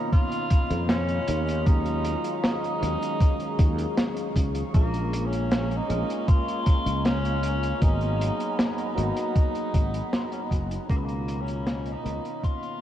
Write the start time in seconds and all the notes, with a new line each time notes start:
Already playing: B2 D#3 A#3 B3 C#4 D#4 F4 D#5 F5 A#5 B5
0.13 F4, kick, closed hi-hat, cabasa
0.32 closed hi-hat, cabasa
0.51 kick, closed hi-hat
0.70 F2, closed hi-hat, cabasa
0.89 C#4, snare, closed hi-hat, cabasa
1.09 closed hi-hat, cabasa
1.28 D#2 G#4 C#6, closed hi-hat
1.47 closed hi-hat, cabasa
1.65 D#3 F#3 G#3 C#4 D#4 F4, kick, closed hi-hat, cabasa
1.86 closed hi-hat, cabasa
2.05 closed hi-hat
2.24 closed hi-hat, cabasa
2.43 D#4, snare, closed hi-hat, cabasa
2.63 closed hi-hat, cabasa
2.80 D#2 D#3 F#3 G#3 C#4 D#4, closed hi-hat
3.01 closed hi-hat, cabasa
3.20 kick, closed hi-hat, cabasa
3.40 closed hi-hat, cabasa
3.59 D#2, kick, closed hi-hat
3.79 closed hi-hat, cabasa
3.97 snare, closed hi-hat, cabasa
4.17 closed hi-hat, cabasa
4.36 C#2, kick, closed hi-hat
4.55 closed hi-hat, cabasa
4.73 A#1 G#3 A#3 C#4 F4 A#4 G#5 A#5, kick, closed hi-hat, cabasa
4.93 closed hi-hat, cabasa
5.13 closed hi-hat
5.26 C#4
5.32 closed hi-hat, cabasa
5.51 snare, closed hi-hat, cabasa
5.71 closed hi-hat, cabasa
5.77 D#4
5.88 A#1 G#3 A#3 C#4 F4 A#4, closed hi-hat
6.09 closed hi-hat, cabasa
6.28 F4, kick, closed hi-hat, cabasa
6.48 closed hi-hat, cabasa
6.66 kick, closed hi-hat
6.86 C#2, closed hi-hat, cabasa
7.05 C#4, snare, closed hi-hat, cabasa
7.24 closed hi-hat, cabasa
7.43 closed hi-hat
7.63 closed hi-hat, cabasa
7.80 G#1 F#3 A#3 B3 D#4 G#4 F#5 B5, kick, closed hi-hat, cabasa
8.01 closed hi-hat, cabasa
8.21 closed hi-hat
8.40 closed hi-hat, cabasa
8.59 D#4, snare, closed hi-hat, cabasa
8.78 closed hi-hat, cabasa
8.95 G#1 F#3 A#3 B3 D#4 F#4, closed hi-hat
9.16 closed hi-hat, cabasa
9.35 kick, closed hi-hat, cabasa
9.55 closed hi-hat, cabasa
9.74 G#1, kick, closed hi-hat
9.94 closed hi-hat, cabasa
10.12 F4, snare, closed hi-hat, cabasa
10.24 D#4
10.32 C#4, closed hi-hat, cabasa
10.43 D#4
10.51 F#1, kick, closed hi-hat
10.70 closed hi-hat, cabasa
10.88 C#2 B2 D#3 A#3 C#4 F4 D#5 F5 B5, kick, closed hi-hat, cabasa
10.97 B3
11.04 A#3
11.08 closed hi-hat, cabasa
11.28 closed hi-hat
11.41 C#4
11.46 closed hi-hat, cabasa
11.67 snare, closed hi-hat, cabasa
11.86 closed hi-hat, cabasa
11.92 D#4
12.03 C#2 D#3 A#3 B3 C#4 F4, closed hi-hat
12.25 closed hi-hat, cabasa
12.43 F4, kick, closed hi-hat, cabasa
12.63 closed hi-hat, cabasa